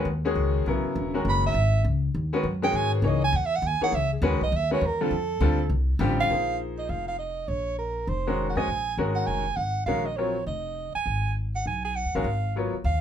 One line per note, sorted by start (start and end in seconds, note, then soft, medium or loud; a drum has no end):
0.05 0.35 D#2 medium
0.25 0.64 D#3 medium
0.25 0.64 G#3 medium
0.25 0.64 C#4 medium
0.25 0.64 F#4 medium
0.25 0.64 G#4 medium
0.35 0.65 C#2 medium
0.66 0.83 B1 medium
0.66 1.11 C#3 medium
0.66 1.11 F#3 medium
0.66 1.11 B3 medium
0.66 1.11 E4 medium
0.66 1.11 A#4 medium
0.84 muted upright bass stroke soft
0.95 1.24 E1 medium
1.14 1.53 D#3 medium
1.14 1.53 G#3 medium
1.14 1.53 C#4 medium
1.14 1.53 F#4 medium
1.14 1.53 A#4 medium
1.25 1.53 F#1 medium
1.29 1.44 B5 medium
1.46 1.83 E5 medium
1.54 1.83 G#1 medium
1.84 2.13 C#2 medium
2.15 2.43 D#2 medium
2.33 2.43 D#3 medium
2.33 2.43 G#3 medium
2.33 2.43 C#4 medium
2.33 2.43 F#4 medium
2.33 2.43 B4 medium
2.43 2.73 F#2 medium
2.62 3.01 D#3 medium
2.62 3.01 G#3 medium
2.62 3.01 C#4 medium
2.62 3.01 F#4 medium
2.62 3.02 G#4 medium
2.62 2.78 G5 loud
2.73 3.02 G#2 medium
2.73 2.93 G#5 loud
2.94 3.09 B4 medium
3.02 3.31 C#2 medium
3.02 3.20 E3 medium
3.02 3.20 A#3 medium
3.02 3.20 D#4 medium
3.02 3.20 G#4 medium
3.02 3.20 C#5 medium
3.07 3.23 D#5 medium
3.24 3.38 G#5 loud
3.33 3.62 E2 loud
3.33 3.47 F#5 medium
3.46 3.57 E5 loud
3.56 3.68 F#5 loud
3.62 3.79 D#2 medium
3.67 3.83 G#5 loud
3.81 3.92 E3 medium
3.81 3.92 A#3 medium
3.81 3.91 D#4 medium
3.81 3.92 G#4 medium
3.81 3.92 C#5 medium
3.81 3.96 F#5 loud
3.81 muted upright bass stroke soft
3.92 4.21 C#2 medium
3.92 4.12 E5 medium
4.13 4.27 G#4 medium
4.22 4.32 E2 loud
4.22 4.39 D#3 medium
4.22 4.39 G#3 medium
4.22 4.39 C#4 medium
4.22 4.39 F#4 medium
4.22 4.39 B4 medium
4.26 4.42 B4 medium
4.32 4.41 C#2 medium
4.41 4.51 B1 medium
4.41 4.58 D#5 loud
4.52 4.81 D#2 medium
4.56 4.72 E5 loud
4.71 4.81 D#3 medium
4.71 4.81 G#3 medium
4.71 4.81 C#4 medium
4.71 4.81 F#4 medium
4.71 4.81 B4 medium
4.71 4.87 C#5 medium
4.81 5.10 E2 medium
4.86 5.03 A#4 medium
5.01 5.10 D3 medium
5.01 5.10 G3 medium
5.01 5.10 C4 medium
5.01 5.11 F4 medium
5.01 5.11 A4 medium
5.01 5.71 A4 medium
5.11 5.40 F2 medium
5.40 5.69 D2 loud
5.40 5.57 D3 medium
5.40 5.57 G3 medium
5.40 5.58 C4 medium
5.40 5.57 F4 medium
5.40 5.57 A4 loud
5.70 5.98 C2 medium
5.99 6.28 A1 loud
5.99 6.30 D3 medium
5.99 6.30 G3 medium
5.99 6.30 C4 medium
5.99 6.30 F4 medium
5.99 6.30 G4 loud
6.20 6.58 F5 loud
6.29 6.86 A#1 medium
6.29 7.12 F3 soft
6.29 7.13 A#3 soft
6.29 7.13 D#4 soft
6.29 7.13 G#4 medium
6.29 7.13 C5 medium
6.78 6.91 D#5 medium
6.89 7.46 F1 medium
6.89 7.07 F5 medium
7.08 7.18 F5 medium
7.19 7.49 D#5 medium
7.48 8.05 A#1 medium
7.48 7.78 C#5 medium
7.78 8.10 A#4 medium
8.07 8.53 F1 medium
8.07 8.48 C5 medium
8.27 8.55 D#3 medium
8.27 8.55 G#3 medium
8.27 8.55 C#4 medium
8.27 8.55 F#4 medium
8.27 8.55 A#4 medium
8.50 8.58 F#5 medium
8.56 8.67 F2 medium
8.56 8.67 G#3 medium
8.56 8.67 C#4 medium
8.56 8.67 F#4 soft
8.56 8.67 C5 medium
8.56 8.67 D#5 medium
8.56 8.98 G#5 loud
8.67 8.95 A#1 medium
8.97 9.25 G#1 medium
8.97 9.43 D#3 medium
8.97 9.43 G#3 medium
8.97 9.43 C#4 medium
8.97 9.43 F#4 medium
8.97 9.43 A#4 medium
9.15 9.28 F#5 medium
9.27 9.55 F1 medium
9.27 9.58 G#5 medium
9.56 9.85 G#1 medium
9.56 9.85 F#5 medium
9.86 10.43 A#1 medium
9.86 10.04 D#3 medium
9.86 10.04 G#3 medium
9.86 10.04 C#4 medium
9.86 10.04 F#4 medium
9.86 10.04 A#4 medium
9.86 10.07 F5 medium
10.06 10.18 D#5 medium
10.16 10.34 F#3 medium
10.16 10.34 C4 medium
10.16 10.34 F4 medium
10.16 10.34 A#4 medium
10.16 10.46 C#5 medium
10.16 10.34 C#5 medium
10.46 10.91 F1 medium
10.46 10.92 D#5 medium
10.95 11.33 G#5 medium
10.95 muted upright bass stroke soft
11.06 11.63 G#1 medium
11.55 11.66 F#5 medium
11.66 12.03 B1 medium
11.66 11.84 G#5 medium
11.84 11.97 G#5 medium
11.96 12.17 F#5 medium
12.05 12.14 D#2 soft
12.15 12.24 A#1 medium
12.15 12.25 D#3 medium
12.15 12.25 G#3 medium
12.15 12.25 C#4 medium
12.15 12.25 F#4 medium
12.15 12.25 A#4 medium
12.15 12.56 F5 medium
12.24 12.70 G#1 medium
12.56 12.72 F#3 medium
12.56 12.72 B3 medium
12.56 12.72 F4 medium
12.56 12.73 A#4 medium
12.56 12.73 C#5 medium
12.73 muted upright bass stroke soft
12.84 13.01 D#2 medium
12.84 13.01 F5 medium